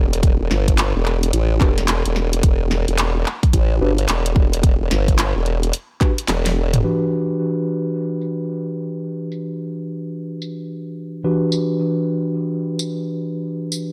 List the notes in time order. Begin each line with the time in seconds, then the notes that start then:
Already playing: E1
0.13 closed hi-hat
0.23 kick, closed hi-hat
0.41 E1
0.51 G1, snare
0.68 kick, closed hi-hat
0.78 clap, closed hi-hat
0.96 E1
1.06 clap
1.23 closed hi-hat
1.33 A1, closed hi-hat
1.61 E1 D4 F#4 G4 B4, kick, clap
1.78 snare, closed hi-hat
1.88 clap, closed hi-hat
2.06 E1, closed hi-hat
2.16 snare
2.33 closed hi-hat
2.43 E1, kick, closed hi-hat
2.71 snare
2.88 E1, closed hi-hat
2.98 clap, closed hi-hat
3.26 clap
3.43 kick, closed hi-hat
3.53 A1, kick, closed hi-hat
3.81 G1 D4 F#4 G4 B4
3.98 closed hi-hat
4.09 E1, clap, closed hi-hat
4.26 closed hi-hat
4.36 E1, kick
4.53 closed hi-hat
4.63 kick, closed hi-hat
4.81 E1
4.91 G1, snare, closed hi-hat
5.08 kick, closed hi-hat
5.19 clap, closed hi-hat
5.36 E1
5.46 closed hi-hat
5.63 closed hi-hat
5.73 closed hi-hat
6.01 D4 F#4 G4 B4, kick, clap, closed hi-hat
6.18 closed hi-hat
6.28 E1, snare, clap, closed hi-hat
6.46 snare, closed hi-hat
6.74 closed hi-hat, mid tom
6.84 E3 D4 F#4 G4 B4, crash
7.11 tambourine
8.21 tambourine
9.32 tambourine
10.42 tambourine
11.24 E3 D4 F#4 G4 B4
11.52 tambourine
12.79 tambourine
13.72 tambourine